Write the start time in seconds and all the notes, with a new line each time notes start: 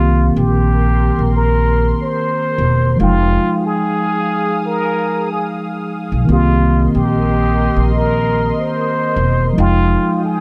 Already playing: C2 D#3 A#3 C4 F4 G4 A#4 C6
0.36 A#1 G4
1.19 A#1
1.36 A#4
2.03 C5
2.58 E1
2.96 F1 F3 G#3 G#4 F5 D#6
3.01 D#4 F4 G5
3.66 G#4
4.66 A#4
5.31 G#4
6.12 B1
6.25 C2 D#3 A#3 A#4 D#5 C6
6.30 C4 F4 G4
6.95 A#1 G4
7.76 A#1
7.95 A#4
8.60 C5
9.16 E1
9.53 F3 G#3 G#4 F5 G5 D#6
9.58 F1 D#4 F4 G5
10.25 G#4